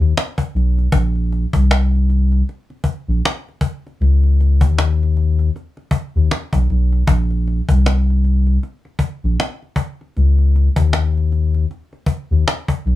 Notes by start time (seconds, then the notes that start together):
0.00 D#2, cajon slap
0.17 cajon slap
0.38 cajon bass
0.54 B1, cajon slap
0.78 cajon slap
0.92 A#1, cajon bass
1.16 cajon slap
1.32 cajon slap
1.53 C2, cajon bass
1.71 cajon slap
1.95 cajon slap
2.10 cajon slap
2.32 cajon slap
2.49 cajon slap
2.70 cajon slap
2.84 cajon bass
3.08 A#1, cajon slap
3.25 cajon slap
3.49 cajon slap
3.61 cajon bass
3.87 cajon slap
4.00 C#2, cajon slap
4.23 cajon slap
4.41 cajon slap
4.61 D#2, cajon bass
4.78 cajon slap
5.03 cajon slap
5.17 cajon slap
5.39 cajon slap
5.56 cajon slap
5.77 cajon slap
5.91 cajon bass
6.15 D#2, cajon slap
6.31 cajon slap
6.53 B1, cajon bass
6.70 B1, cajon slap
6.93 cajon slap
7.07 A#1, cajon bass
7.31 cajon slap
7.47 cajon slap
7.69 C2, cajon bass
7.86 cajon slap
8.10 cajon slap
8.25 cajon slap
8.47 cajon slap
8.63 cajon slap
8.85 cajon slap
8.99 cajon bass
9.23 A#1, cajon slap
9.40 cajon slap
9.62 cajon slap
9.76 cajon bass
10.01 cajon slap
10.17 C#2, cajon slap
10.38 cajon slap
10.56 cajon slap
10.76 D#2, cajon bass
10.93 cajon slap
11.17 cajon slap
11.32 cajon slap
11.54 cajon slap
11.71 cajon slap
11.93 cajon slap
12.06 cajon bass
12.31 D#2, cajon slap
12.48 cajon slap
12.68 cajon bass
12.85 B1, cajon slap